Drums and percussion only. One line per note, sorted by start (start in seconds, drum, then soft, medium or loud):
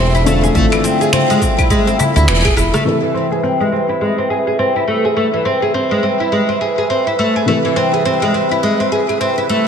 0.15 shaker soft
0.27 darbuka ka medium
0.27 darbuka tek medium
0.27 shaker medium
0.43 darbuka ka medium
0.43 shaker soft
0.55 kick loud
0.55 shaker soft
0.72 finger snap soft
0.72 claves medium
0.72 shaker soft
0.84 darbuka tek soft
0.84 shaker medium
1.00 darbuka tek soft
1.00 shaker soft
1.13 finger snap medium
1.13 darbuka dum medium
1.13 shaker soft
1.31 shaker soft
1.41 kick medium
1.41 darbuka ka soft
1.41 darbuka tek soft
1.41 shaker medium
1.58 kick loud
1.58 darbuka ka soft
1.58 claves medium
1.58 shaker soft
1.70 kick medium
1.70 shaker soft
1.88 shaker soft
2.00 darbuka tek medium
2.00 darbuka dum medium
2.00 shaker medium
2.17 shaker soft
2.28 finger snap loud
2.28 shaker soft
2.45 kick loud
2.45 claves medium
2.45 shaker soft
2.57 cross-stick medium
2.57 shaker medium
2.74 cross-stick medium
2.74 darbuka tek soft
2.74 darbuka dum medium
2.74 shaker soft
3.03 claves medium
3.03 shaker soft
3.15 shaker medium
3.33 shaker soft
3.45 shaker soft
3.90 claves medium
3.90 shaker soft
4.76 claves medium
4.76 shaker soft
5.63 claves medium
5.63 shaker soft
6.49 claves medium
6.49 shaker soft
7.36 claves medium
7.36 shaker soft
8.22 claves medium
8.22 shaker soft
8.92 shaker medium
9.09 claves medium
9.09 shaker soft
9.50 shaker medium